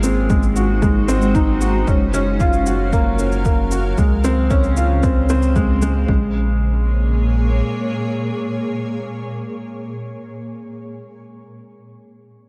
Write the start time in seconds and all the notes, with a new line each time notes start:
Already playing: G#1 G#3 A#3 D#4 G#4
0.03 C4, shaker
0.13 C5
0.20 F#4
0.30 G#3, kick, shaker
0.43 shaker
0.56 F#4, shaker
0.82 G#3, kick, shaker
1.08 C4, shaker
1.22 shaker
1.35 D#4, kick, shaker
1.61 F#4, shaker
1.87 F#1 F#3 C#4, kick, shaker
1.97 F5
2.14 C#4, shaker
2.40 F4 A#4, kick, shaker
2.53 shaker
2.66 F#4, shaker
2.93 A#3, kick, shaker
3.19 C#4, shaker
3.32 shaker
3.45 A#3, kick, shaker
3.71 F#4, shaker
3.98 C#2 C#3 G#3, kick, shaker
4.24 C4, shaker
4.50 C#4, kick, shaker
4.57 C5
4.64 shaker
4.77 F4, shaker
5.03 C4, kick, shaker
5.29 C4, shaker
5.42 shaker
5.56 G#3, kick, shaker
5.82 G#3, shaker
6.08 A#1 A#2 G#3, kick
6.16 A#3
6.25 G#4
6.33 C#5